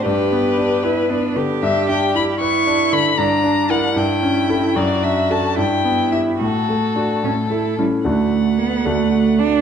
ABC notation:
X:1
M:6/8
L:1/8
Q:3/8=75
K:G
V:1 name="Violin"
B4- B z | [K:D] e g b c'2 b | _b2 f g3 | d e a g2 e |
A4- A z | f6 |]
V:2 name="Cello"
G3 E D G- | [K:D] G3 E3 | D3 E3 | F3 E3 |
F3 C E G, | A,2 B, A,2 D |]
V:3 name="Grand piano"
G,, B, D B B, D, | [K:D] G,, D E B D D, | G,, D [E_B] G,, C [EA] | F,, D [FA] G,, B, [EG] |
A,, A, [DF] A,, A, [CE] | [D,,A,DF]3 [D,,A,DF]3 |]